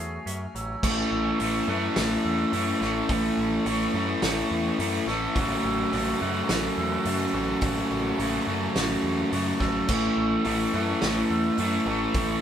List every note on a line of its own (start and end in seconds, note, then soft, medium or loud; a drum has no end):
0.00 0.17 E2 medium
0.00 0.26 F#3 medium
0.00 0.79 A3 medium
0.00 0.83 A3 medium
0.00 0.25 C#4 medium
0.00 0.80 F#4 medium
0.00 0.83 G#4 medium
0.00 0.81 C#5 medium
0.00 0.79 G#5 medium
0.26 0.45 F#2 medium
0.26 0.83 C#4 medium
0.26 closed hi-hat medium
0.55 0.74 A1 medium
0.55 0.83 F#3 medium
0.55 0.84 E6 medium
0.55 closed hi-hat medium
0.83 1.02 A1 loud
0.83 1.39 A2 loud
0.83 1.40 E3 loud
0.83 1.38 A3 medium
0.83 1.41 A3 loud
0.83 1.39 C#4 loud
0.83 1.40 E4 loud
0.83 12.41 A4 medium
0.83 1.41 A4 loud
0.83 5.31 C#5 medium
0.83 3.07 E5 medium
0.83 5.31 B5 medium
0.83 1.12 C#6 medium
0.83 kick loud
0.83 crash loud
1.11 1.31 A1 medium
1.11 1.69 E6 medium
1.39 1.59 A1 loud
1.39 1.67 A2 medium
1.39 1.68 E3 medium
1.39 1.67 A3 medium
1.39 1.69 A3 loud
1.39 1.68 C#4 medium
1.39 1.68 E4 medium
1.39 1.69 A4 loud
1.39 open hi-hat medium
1.67 1.87 F#2 loud
1.67 1.95 A2 medium
1.67 1.96 E3 medium
1.67 1.96 A3 medium
1.67 1.96 A3 loud
1.67 1.96 C#4 medium
1.67 1.96 E4 loud
1.67 1.98 A4 loud
1.67 2.25 F#6 medium
1.96 2.16 A1 medium
1.96 2.52 A2 loud
1.96 2.52 E3 loud
1.96 2.52 A3 medium
1.96 2.53 A3 loud
1.96 2.53 C#4 loud
1.96 2.52 E4 loud
1.96 2.54 A4 loud
1.96 snare loud
1.96 open hi-hat medium
2.25 2.44 E2 medium
2.25 2.81 E6 medium
2.52 2.72 F#2 medium
2.52 2.80 A2 medium
2.52 2.80 E3 loud
2.52 2.81 A3 medium
2.52 2.81 C#4 medium
2.52 2.82 E4 loud
2.52 2.83 A4 medium
2.52 open hi-hat medium
2.80 3.00 A1 medium
2.80 3.09 A2 medium
2.80 3.09 E3 medium
2.80 3.10 A3 loud
2.80 3.08 A3 medium
2.80 3.09 C#4 medium
2.80 3.09 E4 medium
2.80 3.10 A4 loud
2.80 3.38 C#6 medium
2.80 snare soft
3.09 3.29 A1 loud
3.09 3.66 A2 loud
3.09 3.65 E3 loud
3.09 3.66 A3 loud
3.09 3.67 A3 loud
3.09 3.67 C#4 loud
3.09 3.67 E4 loud
3.09 3.68 A4 loud
3.09 9.86 F#5 medium
3.09 kick loud
3.09 open hi-hat medium
3.38 3.57 A1 medium
3.66 3.85 A1 loud
3.66 3.94 A2 medium
3.66 3.93 E3 medium
3.66 3.95 A3 medium
3.66 3.94 A3 loud
3.66 3.96 C#4 medium
3.66 3.95 E4 loud
3.66 3.97 A4 loud
3.66 4.23 C#6 medium
3.66 open hi-hat medium
3.94 4.13 F#2 loud
3.94 4.22 A2 medium
3.94 4.22 E3 medium
3.94 4.24 A3 loud
3.94 4.22 A3 loud
3.94 4.23 C#4 medium
3.94 4.22 E4 loud
3.94 4.23 A4 loud
4.22 4.41 A1 loud
4.22 4.79 A2 loud
4.22 4.79 E3 loud
4.22 4.78 A3 medium
4.22 4.80 A3 loud
4.22 4.79 C#4 loud
4.22 4.79 E4 loud
4.22 4.80 A4 loud
4.22 snare loud
4.22 open hi-hat medium
4.51 4.70 E2 medium
4.79 4.98 F#2 loud
4.79 5.07 A2 medium
4.79 5.07 E3 loud
4.79 5.08 A3 medium
4.79 5.08 A3 loud
4.79 5.08 C#4 medium
4.79 5.08 E4 loud
4.79 5.09 A4 medium
4.79 open hi-hat medium
5.06 5.26 A1 loud
5.06 5.36 A2 medium
5.06 5.34 E3 medium
5.06 5.36 A3 medium
5.06 8.59 A3 loud
5.06 5.37 C#4 medium
5.06 5.35 E4 medium
5.06 5.38 A4 loud
5.06 5.36 E6 medium
5.06 snare soft
5.35 5.55 A1 loud
5.35 5.91 F#2 loud
5.35 5.92 C#3 loud
5.35 5.93 F#3 loud
5.35 5.92 A3 loud
5.35 5.92 C#4 loud
5.35 5.93 F#4 loud
5.35 5.93 A4 loud
5.35 9.84 G#5 medium
5.35 12.41 C#6 medium
5.35 5.64 C#6 loud
5.35 kick loud
5.35 open hi-hat medium
5.64 5.83 A1 medium
5.64 6.21 E6 medium
5.92 6.12 A1 loud
5.92 6.19 F#2 medium
5.92 6.20 C#3 medium
5.92 6.21 F#3 medium
5.92 6.19 A3 medium
5.92 6.20 C#4 medium
5.92 6.21 F#4 loud
5.92 6.21 A4 loud
5.92 open hi-hat medium
6.20 6.48 F#2 medium
6.20 6.40 F#2 loud
6.20 6.48 C#3 medium
6.20 6.49 F#3 medium
6.20 6.47 A3 medium
6.20 6.48 C#4 medium
6.20 6.48 F#4 loud
6.20 6.49 A4 loud
6.20 6.78 F#6 medium
6.47 6.68 A1 loud
6.47 7.05 F#2 loud
6.47 7.06 C#3 loud
6.47 7.06 F#3 loud
6.47 7.04 A3 loud
6.47 7.05 C#4 medium
6.47 7.05 F#4 loud
6.47 7.06 A4 loud
6.47 snare loud
6.47 open hi-hat medium
6.77 6.96 E2 medium
6.77 7.34 E6 medium
7.04 7.25 F#2 loud
7.04 7.33 F#2 medium
7.04 7.34 C#3 loud
7.04 7.34 F#3 loud
7.04 7.33 A3 medium
7.04 7.33 C#4 medium
7.04 7.33 F#4 loud
7.04 7.35 A4 loud
7.04 open hi-hat medium
7.33 7.53 A1 loud
7.33 7.61 F#2 medium
7.33 7.62 C#3 medium
7.33 7.62 F#3 medium
7.33 7.61 A3 medium
7.33 7.62 C#4 medium
7.33 7.62 F#4 loud
7.33 7.64 A4 loud
7.33 7.91 C#6 medium
7.61 7.81 A1 loud
7.61 8.18 F#2 loud
7.61 8.19 C#3 loud
7.61 8.19 F#3 loud
7.61 8.18 A3 loud
7.61 8.19 C#4 loud
7.61 8.19 F#4 loud
7.61 8.20 A4 loud
7.61 kick loud
7.61 open hi-hat medium
7.91 8.10 A1 medium
8.18 8.38 A1 loud
8.18 8.47 F#2 medium
8.18 8.47 C#3 medium
8.18 8.48 F#3 medium
8.18 8.47 A3 medium
8.18 8.47 C#4 medium
8.18 8.47 F#4 medium
8.18 8.49 A4 loud
8.18 8.75 C#6 medium
8.18 open hi-hat medium
8.47 8.66 F#2 loud
8.47 8.75 F#2 medium
8.47 8.76 C#3 medium
8.47 8.76 F#3 loud
8.47 8.75 A3 medium
8.47 8.76 C#4 medium
8.47 8.76 F#4 loud
8.47 8.76 A4 loud
8.75 8.94 A1 loud
8.75 9.31 F#2 loud
8.75 9.32 C#3 loud
8.75 9.33 F#3 loud
8.75 9.32 A3 loud
8.75 9.32 C#4 loud
8.75 9.32 F#4 loud
8.75 9.33 A4 loud
8.75 snare loud
8.75 open hi-hat medium
9.04 9.23 E2 medium
9.32 9.51 F#2 medium
9.32 9.60 F#2 medium
9.32 9.61 C#3 loud
9.32 9.61 F#3 medium
9.32 9.59 A3 medium
9.32 9.60 C#4 medium
9.32 9.60 F#4 medium
9.32 9.62 A4 loud
9.32 open hi-hat medium
9.60 9.79 A1 medium
9.60 9.87 F#2 medium
9.60 9.88 C#3 medium
9.60 9.88 F#3 medium
9.60 9.87 A3 medium
9.60 9.88 C#4 medium
9.60 9.87 F#4 medium
9.60 9.89 A4 medium
9.60 9.89 E6 medium
9.60 kick medium
9.60 snare soft
9.87 10.08 A1 loud
9.87 10.45 A2 loud
9.87 10.45 E3 loud
9.87 10.44 A3 medium
9.87 10.46 A3 loud
9.87 10.45 C#4 loud
9.87 10.46 E4 loud
9.87 10.46 A4 loud
9.87 12.41 E5 medium
9.87 12.41 B5 medium
9.87 10.17 C#6 medium
9.87 kick loud
9.87 crash loud
10.17 10.36 A1 medium
10.17 10.74 E6 medium
10.44 10.64 A1 loud
10.44 10.74 A2 medium
10.44 10.75 E3 medium
10.44 10.73 A3 medium
10.44 10.75 A3 loud
10.44 10.73 C#4 medium
10.44 10.74 E4 medium
10.44 10.75 A4 loud
10.44 open hi-hat medium
10.73 10.93 F#2 loud
10.73 11.02 A2 medium
10.73 11.02 E3 loud
10.73 11.00 A3 medium
10.73 11.03 A3 medium
10.73 11.01 C#4 medium
10.73 11.01 E4 loud
10.73 11.02 A4 loud
10.73 11.30 F#6 medium
11.01 11.21 A1 medium
11.01 11.59 A2 medium
11.01 11.58 E3 loud
11.01 11.58 A3 loud
11.01 11.60 A3 loud
11.01 11.59 C#4 loud
11.01 11.58 E4 medium
11.01 11.59 A4 loud
11.01 snare loud
11.01 open hi-hat medium
11.30 11.49 E2 medium
11.30 11.87 E6 medium
11.58 11.77 F#2 medium
11.58 11.86 A2 medium
11.58 11.85 E3 medium
11.58 11.87 A3 medium
11.58 11.87 A3 loud
11.58 11.87 C#4 medium
11.58 11.87 E4 medium
11.58 11.88 A4 loud
11.58 open hi-hat medium
11.86 12.05 A1 medium
11.86 12.15 A2 medium
11.86 12.15 E3 loud
11.86 12.14 A3 medium
11.86 12.16 A3 loud
11.86 12.15 C#4 medium
11.86 12.15 E4 medium
11.86 12.16 A4 medium
11.86 12.41 C#6 medium
12.14 12.34 A1 loud
12.14 12.41 A2 loud
12.14 12.41 E3 loud
12.14 12.41 A3 loud
12.14 12.41 C#4 loud
12.14 12.41 E4 loud
12.14 12.41 A4 loud
12.14 kick loud
12.14 open hi-hat medium